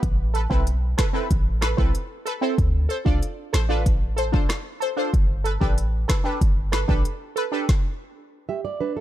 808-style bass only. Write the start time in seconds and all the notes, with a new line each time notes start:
0.03 A1
0.51 B1
1.31 A1
1.78 B1
2.58 D2
3.06 C2
3.54 A1
5.14 G1
5.61 A1
6.41 G1
6.89 A1